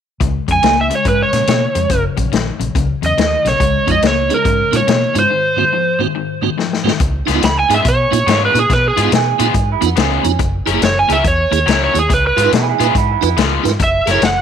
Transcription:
0.20 C#2 C#3 G#3, kick, closed hi-hat
0.48 F2 C#3 G#3, kick, closed hi-hat
0.52 G#5
0.63 C#2 C#3 A#3, snare, closed hi-hat
0.81 E5
0.90 C#3 G#3, closed hi-hat
0.95 C#5
1.05 G#2 C#3 G#3 B4, kick, closed hi-hat
1.23 C#5
1.33 A#2 C#3 G#3, snare, closed hi-hat
1.47 B2 C#3 A#3, snare, closed hi-hat
1.75 F2 C#3 G#3, closed hi-hat
1.90 F#1 F#2 C#3, kick, closed hi-hat
2.17 A#1 F#2 C#3, kick, closed hi-hat
2.32 A#1 F#2 D#3, snare, closed hi-hat
2.60 A#1 F#2 C#3, closed hi-hat
2.75 C#2 F#2 C#3, kick, closed hi-hat
3.02 E2 F#2 C#3 D#5, closed hi-hat
3.18 D#2 F#2 D#3, snare, closed hi-hat
3.45 B1 F#2 C#3 C#5, snare, closed hi-hat
3.60 C#2 C#3 G#3, kick, closed hi-hat
3.86 F2 C#3 G#3 B3 D#4 F4, kick, closed hi-hat
3.92 D#5
4.02 C#2 C#3 A#3, snare, closed hi-hat
4.07 C#5
4.29 C#3 G#3 B3 D#4 G#4, closed hi-hat
4.34 A#4
4.45 G#2 C#3 G#3, kick, closed hi-hat
4.71 A#2 C#3 G#3 B3 D#4 F4, closed hi-hat
4.76 C#5
4.87 B2 C#3 A#3, snare, closed hi-hat
5.14 G#2 C#3 G#3 B3 D#4 F4, closed hi-hat
5.19 C5
5.30 G#2 D#3
5.56 G#2 D#3 A#3 C4 F#4
5.73 G#2 F3
5.99 G#2 D#3 A#3 C4 F#4
6.15 G#2 D#3
6.42 G#2 D#3 A#3 C4 F#4
6.58 G#2 F3, snare
6.73 snare
6.83 G#2 D#3 A#3 C4 F#4, snare
7.00 C#2, muted overdriven electric guitar stroke, kick, closed hi-hat
7.25 C#2 C#3 G#3 B3 D#4 F4, snare, closed hi-hat
7.34 B3 D#4 F4
7.42 C#2 B5, muted overdriven electric guitar stroke, snare, closed hi-hat
7.59 G#5
7.69 G#2 C#3 G#3 B3 D#4 F4 G#4, closed hi-hat
7.74 E5
7.85 B2 C#5, muted overdriven electric guitar stroke, kick, closed hi-hat
8.11 A#2 B3 D#4 F4, muted overdriven electric guitar stroke, closed hi-hat
8.27 G#2 C#3 G#3 B3 F4, snare, closed hi-hat
8.46 B4
8.54 A#2 B3 D#4 F4, muted overdriven electric guitar stroke, closed hi-hat
8.59 G#4
8.70 B2 B4, muted overdriven electric guitar stroke, kick, snare, closed hi-hat
8.88 G#4
8.96 G#2 C#3 G#3 B3 D#4 F4, closed hi-hat
9.03 B3 D#4 F4
9.12 B2 G#4, muted overdriven electric guitar stroke, snare, closed hi-hat
9.39 A#2 C#3 G#3 B3 D#4 F4, closed hi-hat
9.54 G#2, muted overdriven electric guitar stroke, kick, closed hi-hat
9.72 E4
9.81 F2 B3 D#4 F4, muted overdriven electric guitar stroke, closed hi-hat
9.86 B3
9.96 C#2 C#3 G#3 B3 C#4 F4, snare, closed hi-hat
10.23 F2 B3 D#4 F4, muted overdriven electric guitar stroke, closed hi-hat
10.39 F#1, muted overdriven electric guitar stroke, kick, closed hi-hat
10.66 F#1 F#3 C#4 E4 G#4 A#4, closed hi-hat
10.74 A#3 E4 G#4
10.82 F#1 C#5, muted overdriven electric guitar stroke, snare, closed hi-hat
10.99 G#5
11.08 C#2 F#3 A#3 C#4 E4 G#4 A#4, closed hi-hat
11.13 E5
11.24 E2 C#5, muted overdriven electric guitar stroke, kick, closed hi-hat
11.51 D#2 A#3 E4 G#4, muted overdriven electric guitar stroke, closed hi-hat
11.66 C#2 F#3 C#4 E4 A#4, snare, closed hi-hat
11.84 C#5
11.94 D#2 A#3 E4 G#4, muted overdriven electric guitar stroke, closed hi-hat
11.99 G#4
12.09 C#2, muted overdriven electric guitar stroke, kick, closed hi-hat
12.14 B4
12.27 B4
12.36 G#2 C#3 G#3 B3 F4 B4, closed hi-hat
12.44 D#4 F4 B4
12.52 B2 E4 G#4, muted overdriven electric guitar stroke, snare, closed hi-hat
12.69 E4 G#4
12.79 A#2 C#3 G#3 B3 D#4 F4 B4, closed hi-hat
12.83 E4 G#4
12.95 G#2 B3 E4, muted overdriven electric guitar stroke, kick, closed hi-hat
13.11 B3 E4
13.21 F2 B3 D#4 F4 B4, muted overdriven electric guitar stroke, closed hi-hat
13.26 E4
13.37 C#2 C#3 G#3 B3 F4, snare, closed hi-hat
13.63 G#2 D#4 F4 B4, muted overdriven electric guitar stroke, snare, closed hi-hat
13.79 F#1, muted overdriven electric guitar stroke, kick, closed hi-hat
13.84 E5
14.06 F#1 F#3 C#4 E4 G#4 A#4, snare, closed hi-hat
14.11 E4 G#4 A#4 C#5
14.22 F#1 F#5, muted overdriven electric guitar stroke, snare, closed hi-hat

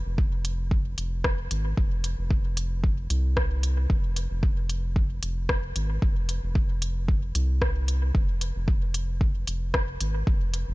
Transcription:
0.06 F1
0.18 kick
0.45 closed hi-hat
0.71 kick
0.98 F1, closed hi-hat
1.24 kick, cross-stick
1.51 G#1, closed hi-hat
1.77 F1, kick
2.04 closed hi-hat
2.19 F1
2.31 kick
2.57 closed hi-hat
2.84 kick
3.10 C2, closed hi-hat
3.37 kick, cross-stick
3.63 closed hi-hat
3.90 F1, kick
4.16 closed hi-hat
4.31 F1
4.43 kick
4.70 closed hi-hat
4.96 kick
5.23 F1, closed hi-hat
5.49 kick, cross-stick
5.76 G#1, closed hi-hat
6.02 F1, kick
6.29 closed hi-hat
6.44 F1
6.55 kick
6.82 closed hi-hat
7.08 kick
7.35 C2, closed hi-hat
7.62 kick, cross-stick
7.88 closed hi-hat
8.15 F1, kick
8.41 closed hi-hat
8.56 F1
8.68 kick
8.94 closed hi-hat
9.21 kick
9.47 F1, closed hi-hat
9.74 kick, cross-stick
10.01 G#1, closed hi-hat
10.27 F1, kick
10.54 closed hi-hat
10.68 F1

